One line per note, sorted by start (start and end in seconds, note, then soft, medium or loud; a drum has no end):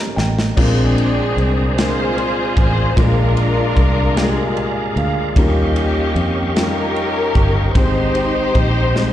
0.00 0.14 D#2 loud
0.00 0.60 D#3 medium
0.00 0.59 G3 medium
0.00 0.60 A#3 medium
0.00 0.60 C#4 medium
0.00 0.60 D#4 medium
0.00 0.58 A#4 medium
0.00 0.15 A#5 medium
0.16 0.54 A1 medium
0.16 0.54 G5 medium
0.16 snare medium
0.39 snare medium
0.56 1.33 A#1 loud
0.56 1.73 A#2 medium
0.56 1.59 G#3 medium
0.56 1.59 C4 medium
0.56 1.75 C4 medium
0.56 1.59 D4 medium
0.56 1.75 D4 medium
0.56 1.60 F4 medium
0.56 2.94 G#4 medium
0.56 1.60 A#4 medium
0.56 2.95 C5 medium
0.56 2.94 D5 medium
0.56 5.32 A#5 medium
0.56 kick loud
0.56 crash medium
0.60 1.75 G#4 loud
0.98 ride medium
1.37 2.53 C2 medium
1.37 ride soft
1.76 2.79 G#3 medium
1.76 2.79 C4 medium
1.76 2.79 D4 medium
1.76 2.79 F4 medium
1.76 2.94 F4 medium
1.76 2.94 G#4 medium
1.76 2.80 A#4 medium
1.76 2.57 C5 loud
1.76 snare loud
1.76 ride medium
2.18 ride soft
2.57 2.94 A1 loud
2.57 2.95 C5 loud
2.57 kick medium
2.57 ride soft
2.96 3.73 A#1 loud
2.96 4.13 A#2 medium
2.96 3.98 G#3 medium
2.96 3.98 A#3 medium
2.96 3.99 D4 medium
2.96 4.93 D4 medium
2.96 3.99 F4 medium
2.96 4.93 F4 medium
2.96 5.34 G#4 medium
2.96 3.04 G#4 medium
2.96 4.97 A#4 loud
2.96 5.34 D5 medium
2.96 7.71 F5 medium
2.96 kick loud
2.96 ride medium
3.04 4.03 A#4 medium
3.37 ride medium
3.77 4.92 C2 loud
3.77 kick medium
3.77 ride soft
4.16 5.18 G#3 medium
4.16 5.18 A#3 medium
4.16 5.19 D4 medium
4.16 5.19 F4 medium
4.16 4.24 G4 medium
4.16 snare loud
4.16 ride medium
4.24 5.22 G#4 loud
4.57 4.94 G#5 medium
4.57 ride soft
4.96 5.33 D2 medium
4.96 5.34 F5 medium
4.96 ride soft
5.36 6.12 D#2 loud
5.36 6.52 D#3 medium
5.36 6.38 G3 medium
5.36 6.53 A#3 medium
5.36 6.38 C#4 medium
5.36 6.53 C#4 medium
5.36 6.38 D#4 medium
5.36 6.39 F4 medium
5.36 7.73 G4 medium
5.36 6.53 G4 loud
5.36 6.39 A#4 medium
5.36 9.13 D#5 medium
5.36 7.73 C#6 medium
5.36 kick loud
5.36 ride medium
5.76 ride medium
6.15 7.31 F2 loud
6.15 ride soft
6.56 7.57 G3 medium
6.56 7.58 C#4 medium
6.56 7.72 C#4 medium
6.56 7.58 D#4 medium
6.56 7.58 F4 medium
6.56 7.72 G4 medium
6.56 7.59 G4 medium
6.56 7.75 A#4 loud
6.56 snare loud
6.56 ride medium
6.96 ride soft
7.35 7.72 G1 medium
7.35 kick loud
7.35 ride soft
7.74 8.51 G#1 loud
7.74 8.91 G#2 medium
7.74 8.77 G#3 medium
7.74 8.77 C4 medium
7.74 8.77 D#4 medium
7.74 9.13 D#4 medium
7.74 8.78 G4 medium
7.74 9.13 G4 medium
7.74 9.13 C5 loud
7.74 9.13 C5 medium
7.74 8.78 C5 medium
7.74 9.13 C6 medium
7.74 kick loud
7.74 ride medium
8.15 ride medium
8.55 9.13 A#1 medium
8.55 kick medium
8.55 ride soft
8.95 9.13 G3 medium
8.95 9.13 G#3 medium
8.95 9.13 C4 medium
8.95 9.13 D#4 medium
8.95 9.13 C5 medium
8.95 snare medium